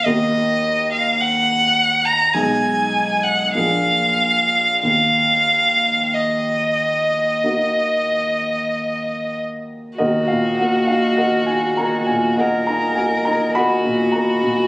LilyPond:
<<
  \new Staff \with { instrumentName = "Violin" } { \time 4/4 \key ees \minor \tempo 4 = 50 ees''8. f''16 ges''8. bes''16 aes''8. ges''16 f''4 | f''4 ees''2~ ees''8 r8 | ges'2 bes'4 ges'4 | }
  \new Staff \with { instrumentName = "Grand piano" } { \time 4/4 \key ees \minor r1 | r1 | <ges' bes' ees''>16 f''16 ges''16 f''16 <bes' ees'' ges''>16 aes''16 bes''16 aes''16 <bes' ees'' ges''>16 bes''16 aes''16 bes''16 <ees'' ges'' ces'''>8 bes''8 | }
  \new Staff \with { instrumentName = "Grand piano" } { \time 4/4 \key ees \minor <ees, bes ees' ges'>2 <ces, aes ees' aes'>4 <bes,, bes d' aes'>4 | ees,2 <bes ees' ges'>2 | ees,16 bes,16 bes16 ees'16 ges'16 ees'16 bes16 bes,16 bes16 ees'16 ges'16 ees'16 bes16 bes,16 bes16 bes,16 | }
>>